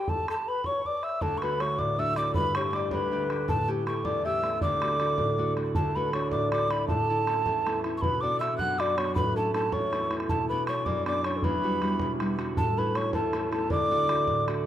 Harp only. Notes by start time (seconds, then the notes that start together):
1.22 D2
1.42 A3 D4 F#4
1.61 A3 D4 F#4
1.79 A2
1.99 A3 D4 F#4
2.17 A3 D4 F#4
2.36 G2
2.55 A3 D4 G4
2.71 A3 D4
2.76 G4
2.92 D2
3.11 A3 D4 G4
3.30 A3 D4 G4
3.48 A2
3.67 A3 C#4 G4
3.86 A3 C#4 G4
4.04 E2
4.25 A3 C#4 G4
4.42 A3 C#4 G4
4.62 D2
4.82 A3 D4 F#4
4.99 A3 D4 F#4
5.19 A2
5.38 A3 D4 F#4
5.56 A3 D4 F#4
5.76 D2
5.96 A3 D4 F#4
6.14 A3 D4 F#4
6.32 A2
6.52 A3 D4 F#4
6.70 A3 D4 F#4
6.89 A2
7.09 A3 C#4 E4
7.27 A3 C#4 E4
7.46 E2
7.66 A3 C#4 E4
7.84 A3 C#4 E4
8.03 B2
8.22 B3 D4 F#4
8.41 B3 D4 F#4
8.59 F#2
8.79 B3 D4 F#4
8.97 B3 D4 F#4
9.16 A2
9.36 A3 C#4 E4
9.54 A3 C#4 E4
9.73 E2
9.93 A3 C#4 E4
10.11 A3 C#4 E4
10.30 B2
10.50 B3 C#4 D4
10.68 B3 C#4 D4
10.87 F#2
11.06 B3 C#4 D4
11.25 B3 C#4 D4
11.44 E2
11.63 G3 E4 F#4
11.82 G3 E4 F#4
12.01 B2
12.21 G3 E4 F#4
12.38 G3 E4 F#4
12.57 A2
12.77 A3 C#4 E4
12.95 A3 C#4 E4
13.14 E2
13.34 A3 C#4 E4
13.51 A3 C#4 E4
13.70 D2
13.90 A3 D4 F#4
14.09 A3 D4 F#4
14.28 A2
14.48 A3 D4 F#4